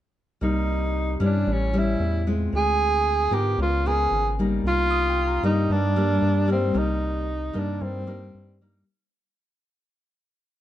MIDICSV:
0, 0, Header, 1, 5, 480
1, 0, Start_track
1, 0, Key_signature, -3, "minor"
1, 0, Tempo, 529101
1, 375, Time_signature, 4, 2, 24, 8
1, 9622, End_track
2, 0, Start_track
2, 0, Title_t, "Tine electric piano"
2, 0, Program_c, 0, 4
2, 4386, Control_c, 0, 64, 127
2, 4451, Note_on_c, 0, 87, 48
2, 4623, Note_on_c, 0, 79, 40
2, 4785, Note_on_c, 0, 82, 37
2, 5639, Note_off_c, 0, 87, 0
2, 5785, Note_off_c, 0, 79, 0
2, 5926, Note_off_c, 0, 82, 0
2, 6851, Note_on_c, 0, 70, 36
2, 8039, Note_off_c, 0, 70, 0
2, 8063, Control_c, 0, 64, 0
2, 9622, End_track
3, 0, Start_track
3, 0, Title_t, "Tenor saxophone"
3, 0, Program_c, 1, 66
3, 395, Note_on_c, 1, 63, 75
3, 1069, Note_off_c, 1, 63, 0
3, 1138, Note_on_c, 1, 62, 74
3, 1383, Note_on_c, 1, 61, 83
3, 1397, Note_off_c, 1, 62, 0
3, 1620, Note_on_c, 1, 64, 83
3, 1634, Note_off_c, 1, 61, 0
3, 2078, Note_off_c, 1, 64, 0
3, 2324, Note_on_c, 1, 68, 104
3, 3039, Note_on_c, 1, 67, 86
3, 3052, Note_off_c, 1, 68, 0
3, 3267, Note_off_c, 1, 67, 0
3, 3285, Note_on_c, 1, 65, 84
3, 3511, Note_on_c, 1, 68, 88
3, 3525, Note_off_c, 1, 65, 0
3, 3983, Note_off_c, 1, 68, 0
3, 4243, Note_on_c, 1, 65, 107
3, 4911, Note_off_c, 1, 65, 0
3, 4946, Note_on_c, 1, 63, 80
3, 5191, Note_on_c, 1, 62, 97
3, 5204, Note_off_c, 1, 63, 0
3, 5901, Note_off_c, 1, 62, 0
3, 5912, Note_on_c, 1, 60, 80
3, 6152, Note_on_c, 1, 63, 86
3, 6166, Note_off_c, 1, 60, 0
3, 6883, Note_on_c, 1, 62, 74
3, 6897, Note_off_c, 1, 63, 0
3, 7099, Note_on_c, 1, 60, 75
3, 7112, Note_off_c, 1, 62, 0
3, 7815, Note_off_c, 1, 60, 0
3, 9622, End_track
4, 0, Start_track
4, 0, Title_t, "Nylon-string guitar"
4, 0, Program_c, 2, 24
4, 373, Note_on_c, 2, 55, 51
4, 378, Note_on_c, 2, 48, 49
4, 384, Note_on_c, 2, 58, 49
4, 387, Note_on_c, 2, 63, 54
4, 1056, Note_off_c, 2, 55, 0
4, 1061, Note_off_c, 2, 58, 0
4, 1061, Note_off_c, 2, 63, 0
4, 1088, Note_on_c, 2, 55, 65
4, 1096, Note_on_c, 2, 61, 60
4, 1101, Note_on_c, 2, 64, 62
4, 1314, Note_off_c, 2, 48, 0
4, 1329, Note_on_c, 2, 45, 48
4, 1535, Note_off_c, 2, 55, 0
4, 1536, Note_off_c, 2, 61, 0
4, 1540, Note_off_c, 2, 64, 0
4, 1572, Note_on_c, 2, 55, 65
4, 1578, Note_on_c, 2, 61, 58
4, 1580, Note_on_c, 2, 64, 64
4, 2016, Note_off_c, 2, 55, 0
4, 2018, Note_off_c, 2, 61, 0
4, 2019, Note_off_c, 2, 64, 0
4, 2058, Note_on_c, 2, 56, 49
4, 2062, Note_on_c, 2, 60, 55
4, 2066, Note_on_c, 2, 65, 55
4, 2268, Note_off_c, 2, 45, 0
4, 2292, Note_on_c, 2, 50, 48
4, 2978, Note_off_c, 2, 56, 0
4, 2979, Note_off_c, 2, 60, 0
4, 2982, Note_off_c, 2, 65, 0
4, 3006, Note_on_c, 2, 59, 53
4, 3011, Note_on_c, 2, 65, 62
4, 3019, Note_on_c, 2, 70, 73
4, 3229, Note_off_c, 2, 50, 0
4, 3260, Note_on_c, 2, 49, 51
4, 3452, Note_off_c, 2, 59, 0
4, 3453, Note_off_c, 2, 65, 0
4, 3458, Note_off_c, 2, 70, 0
4, 3501, Note_on_c, 2, 59, 60
4, 3503, Note_on_c, 2, 65, 55
4, 3509, Note_on_c, 2, 70, 65
4, 3939, Note_off_c, 2, 65, 0
4, 3940, Note_off_c, 2, 59, 0
4, 3943, Note_off_c, 2, 70, 0
4, 3983, Note_on_c, 2, 55, 53
4, 3988, Note_on_c, 2, 58, 57
4, 3990, Note_on_c, 2, 63, 58
4, 4193, Note_off_c, 2, 49, 0
4, 4222, Note_on_c, 2, 48, 50
4, 4900, Note_off_c, 2, 55, 0
4, 4901, Note_off_c, 2, 63, 0
4, 4902, Note_off_c, 2, 58, 0
4, 4930, Note_on_c, 2, 55, 67
4, 4932, Note_on_c, 2, 58, 61
4, 4939, Note_on_c, 2, 63, 67
4, 5153, Note_off_c, 2, 48, 0
4, 5174, Note_on_c, 2, 43, 52
4, 5372, Note_off_c, 2, 55, 0
4, 5375, Note_off_c, 2, 58, 0
4, 5376, Note_off_c, 2, 63, 0
4, 5410, Note_on_c, 2, 55, 64
4, 5417, Note_on_c, 2, 58, 62
4, 5852, Note_off_c, 2, 55, 0
4, 5856, Note_off_c, 2, 58, 0
4, 5875, Note_on_c, 2, 55, 59
4, 5888, Note_on_c, 2, 58, 51
4, 5894, Note_on_c, 2, 63, 57
4, 6085, Note_off_c, 2, 55, 0
4, 6092, Note_off_c, 2, 58, 0
4, 6093, Note_off_c, 2, 63, 0
4, 6109, Note_off_c, 2, 43, 0
4, 6112, Note_on_c, 2, 48, 49
4, 6117, Note_on_c, 2, 55, 49
4, 6118, Note_on_c, 2, 58, 51
4, 6124, Note_on_c, 2, 63, 55
4, 6599, Note_off_c, 2, 55, 0
4, 6602, Note_off_c, 2, 58, 0
4, 6605, Note_off_c, 2, 63, 0
4, 6835, Note_on_c, 2, 55, 57
4, 6843, Note_on_c, 2, 58, 61
4, 6850, Note_on_c, 2, 63, 58
4, 7058, Note_off_c, 2, 48, 0
4, 7084, Note_on_c, 2, 43, 52
4, 7284, Note_off_c, 2, 55, 0
4, 7289, Note_off_c, 2, 58, 0
4, 7290, Note_off_c, 2, 63, 0
4, 7319, Note_on_c, 2, 55, 54
4, 7325, Note_on_c, 2, 58, 61
4, 7329, Note_on_c, 2, 63, 66
4, 7768, Note_off_c, 2, 55, 0
4, 7769, Note_off_c, 2, 58, 0
4, 7769, Note_off_c, 2, 63, 0
4, 7814, Note_on_c, 2, 55, 54
4, 7820, Note_on_c, 2, 58, 50
4, 7820, Note_on_c, 2, 63, 56
4, 8015, Note_off_c, 2, 55, 0
4, 8016, Note_off_c, 2, 58, 0
4, 8017, Note_off_c, 2, 63, 0
4, 8024, Note_off_c, 2, 43, 0
4, 9622, End_track
5, 0, Start_track
5, 0, Title_t, "Analog synth bass"
5, 0, Program_c, 3, 38
5, 377, Note_on_c, 3, 36, 77
5, 1060, Note_off_c, 3, 36, 0
5, 1093, Note_on_c, 3, 43, 83
5, 1317, Note_off_c, 3, 43, 0
5, 1334, Note_on_c, 3, 33, 106
5, 1781, Note_off_c, 3, 33, 0
5, 1813, Note_on_c, 3, 40, 97
5, 2261, Note_off_c, 3, 40, 0
5, 2295, Note_on_c, 3, 38, 82
5, 2978, Note_off_c, 3, 38, 0
5, 3005, Note_on_c, 3, 44, 81
5, 3233, Note_off_c, 3, 44, 0
5, 3250, Note_on_c, 3, 37, 113
5, 3698, Note_off_c, 3, 37, 0
5, 3731, Note_on_c, 3, 32, 87
5, 4178, Note_off_c, 3, 32, 0
5, 4205, Note_on_c, 3, 36, 90
5, 4892, Note_off_c, 3, 36, 0
5, 4929, Note_on_c, 3, 43, 83
5, 5154, Note_off_c, 3, 43, 0
5, 5169, Note_on_c, 3, 43, 107
5, 5617, Note_off_c, 3, 43, 0
5, 5645, Note_on_c, 3, 43, 95
5, 6094, Note_off_c, 3, 43, 0
5, 6123, Note_on_c, 3, 36, 86
5, 6811, Note_off_c, 3, 36, 0
5, 6853, Note_on_c, 3, 43, 82
5, 7076, Note_off_c, 3, 43, 0
5, 7087, Note_on_c, 3, 43, 104
5, 7535, Note_off_c, 3, 43, 0
5, 7572, Note_on_c, 3, 43, 85
5, 8018, Note_off_c, 3, 43, 0
5, 9622, End_track
0, 0, End_of_file